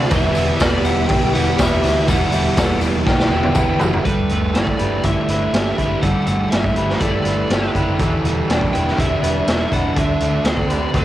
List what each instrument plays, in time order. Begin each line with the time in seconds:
Already playing: fingered electric bass C3, distorted electric guitar D3 A3 D4, overdriven electric guitar D3 A3 C4 F#4, clean electric guitar G4
0.10 fingered electric bass E1, distorted electric guitar E2 B2, overdriven electric guitar E3 G3 B3, string machine G4 E5 B5 D6, clean electric guitar D5, lead electric guitar E5, kick, open hi-hat, tambourine
0.14 distorted electric guitar E3, overdriven electric guitar E4
0.35 fingered electric bass E1, overdriven electric guitar G3 B3 E4, clean electric guitar G4, open hi-hat, tambourine
0.60 fingered electric bass E1, overdriven electric guitar E3 G3 B3 E4, clean electric guitar A4, kick, snare, open hi-hat, tambourine
0.67 lead electric guitar D5
0.85 distorted electric guitar B2 E3, clean electric guitar G4, lead electric guitar F#5, open hi-hat, tambourine
0.89 distorted electric guitar E2
1.08 fingered electric bass B1, overdriven electric guitar E3 G3 B3, lead electric guitar G5, kick, open hi-hat, tambourine
1.13 overdriven electric guitar E4
1.34 fingered electric bass E1, overdriven electric guitar G3 B3 E4, clean electric guitar G4, lead electric guitar F#5, open hi-hat
1.58 fingered electric bass E1, distorted electric guitar E2 B2, overdriven electric guitar E3 G3 B3 E4, clean electric guitar B4, lead electric guitar E5, kick, snare, open hi-hat, tambourine
1.63 distorted electric guitar E3
1.83 fingered electric bass D2, overdriven electric guitar G3 B3 E4, clean electric guitar F#4, snare, open hi-hat, tambourine
2.07 fingered electric bass E1, distorted electric guitar E2 B2, overdriven electric guitar E3 G3 B3, clean electric guitar D5, lead electric guitar F#5, string machine A5, kick, open hi-hat, tambourine
2.11 distorted electric guitar E3, overdriven electric guitar E4
2.32 fingered electric bass E1, overdriven electric guitar G3 B3 E4, clean electric guitar G4, open hi-hat, tambourine
2.57 fingered electric bass E1, overdriven electric guitar E3 G3 B3 E4, clean electric guitar A4, kick, snare, open hi-hat, tambourine
2.81 distorted electric guitar B2 E3, clean electric guitar G4, open hi-hat, tambourine
2.85 distorted electric guitar E2
3.06 fingered electric bass B1, overdriven electric guitar E3 G3 B3 E4, lead electric guitar G5, kick, snare, tambourine
3.19 snare
3.30 fingered electric bass E1, overdriven electric guitar G3 B3 E4, clean electric guitar G4, tambourine
3.43 high tom
3.55 fingered electric bass E1, distorted electric guitar E2 B2, overdriven electric guitar E3 G3 B3 E4, clean electric guitar B4, kick, mid tom, tambourine
3.60 distorted electric guitar E3
3.79 fingered electric bass F#1, overdriven electric guitar G3 B3 E4, clean electric guitar F#4, floor tom, tambourine
3.93 floor tom
4.05 fingered electric bass G1, distorted electric guitar G2 D3, overdriven electric guitar G3, clean electric guitar A4, lead electric guitar B4, kick, closed hi-hat
4.09 distorted electric guitar G3
4.29 fingered electric bass G1, overdriven electric guitar A3, closed hi-hat
4.54 fingered electric bass G1, overdriven electric guitar E4, clean electric guitar G4, lead electric guitar D5, snare, closed hi-hat
4.67 kick
4.78 fingered electric bass G1, overdriven electric guitar G4 B4, clean electric guitar B4, closed hi-hat
5.03 fingered electric bass G1, distorted electric guitar G2 D3, overdriven electric guitar A3 E4, clean electric guitar A4, lead electric guitar E5, kick, closed hi-hat
5.08 distorted electric guitar G3
5.28 fingered electric bass G1, overdriven electric guitar A3 E4, clean electric guitar B4, closed hi-hat
5.53 fingered electric bass G1, overdriven electric guitar E4 G4, clean electric guitar A4, snare, closed hi-hat
5.78 fingered electric bass G1, overdriven electric guitar E4 G4, clean electric guitar B4, kick, closed hi-hat
6.01 fingered electric bass G1, distorted electric guitar G2 D3, overdriven electric guitar G3, clean electric guitar A4, lead electric guitar F#5, kick, closed hi-hat
6.06 distorted electric guitar G3
6.27 fingered electric bass G1, overdriven electric guitar A3, lead electric guitar F#5, closed hi-hat
6.50 fingered electric bass G1, overdriven electric guitar E4, clean electric guitar G4, lead electric guitar E5, snare, closed hi-hat
6.64 kick
6.76 fingered electric bass G1, overdriven electric guitar G4 B4, clean electric guitar B4, closed hi-hat
6.90 snare
6.99 fingered electric bass G1, distorted electric guitar G2 D3, overdriven electric guitar A3 E4, clean electric guitar A4, lead electric guitar D5, kick, closed hi-hat
7.04 distorted electric guitar G3
7.25 fingered electric bass G1, overdriven electric guitar A3 E4, clean electric guitar B4, closed hi-hat
7.50 fingered electric bass G1, overdriven electric guitar E4 G4, clean electric guitar A4, snare, closed hi-hat
7.75 fingered electric bass F#1, overdriven electric guitar E4 G4, clean electric guitar B4, kick, closed hi-hat
7.99 fingered electric bass E1, distorted electric guitar E2 B2 E3, overdriven electric guitar E3, clean electric guitar A4, kick, closed hi-hat
8.24 fingered electric bass E1, overdriven electric guitar G3, closed hi-hat
8.49 fingered electric bass E1, overdriven electric guitar D4, clean electric guitar G4, snare, closed hi-hat
8.61 kick
8.73 fingered electric bass E1, overdriven electric guitar E4 B4, clean electric guitar B4, lead electric guitar G5, closed hi-hat
8.88 snare
8.97 fingered electric bass E1, distorted electric guitar E2 B2 E3, overdriven electric guitar G3 D4, clean electric guitar A4, lead electric guitar E5, kick, closed hi-hat
9.22 fingered electric bass E1, overdriven electric guitar G3 D4, clean electric guitar B4, closed hi-hat
9.47 fingered electric bass E1, overdriven electric guitar D4 E4, clean electric guitar A4, snare, closed hi-hat
9.72 fingered electric bass E1, overdriven electric guitar D4 E4, clean electric guitar B4, lead electric guitar F#5, kick, closed hi-hat
9.95 fingered electric bass D2, distorted electric guitar D3 A3, overdriven electric guitar D3, clean electric guitar A4, lead electric guitar E5, kick, closed hi-hat
9.99 distorted electric guitar D4
10.20 fingered electric bass D2, overdriven electric guitar A3, closed hi-hat
10.44 fingered electric bass D2, overdriven electric guitar C4, clean electric guitar G4, lead electric guitar D5, snare, closed hi-hat
10.57 kick
10.67 fingered electric bass D2, overdriven electric guitar G4 C5, clean electric guitar B4, closed hi-hat
10.93 fingered electric bass D2, distorted electric guitar D3 A3 D4, overdriven electric guitar A3 C4, clean electric guitar A4, lead electric guitar C5, kick, closed hi-hat